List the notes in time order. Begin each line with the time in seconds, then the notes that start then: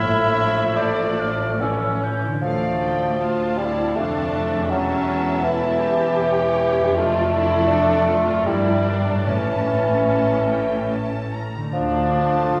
Already playing: A1 A2 F3 A3 E4 F4 A4 E5 F6
0.12 A3
0.33 D4
0.55 F4
0.76 D4 A4 D5 G6
0.99 D5
1.20 F5 F6
1.42 A5
1.60 A2 E3 C#4 E4 E6
1.83 E3
2.03 C#4 G6
2.25 D3 E4
2.31 D4
2.35 F4
2.40 D3 F3 A3 A4 D5
2.44 D2 F5
2.83 G5
3.20 D4 F4 F5 A5
3.57 G3 C4 E4
3.96 F1 F2 A3 D4 F5 A5
4.33 E5
4.54 E2 C#4
4.63 G4
4.67 F#3 E5
4.71 E1 E2 C#4 A5
5.08 B3
5.43 E3 A3 E4
5.80 B3 G4
6.19 C#4 C#5 G5
6.79 F2
6.83 D4
6.88 A4
6.92 D5
6.97 F1 F2 A3 D4 F4 A4 D5
7.33 E4
7.71 D4
8.08 F4
8.29 G2
8.33 D4
8.38 A#4
8.42 G3 E4 D5
8.46 G1 G2 D4 A#4
8.87 D4
9.09 A2
9.15 A3
9.19 A4
9.23 A2 C#4 A4 C#5 A5
9.28 A1 A2 E3 C#4
10.08 A5
10.49 G5
10.91 A5
11.32 A#5
11.56 D3
11.60 A3 A4
11.69 D5
11.73 D2 F3 D4
12.12 D4 A4 A5
12.51 D2 F4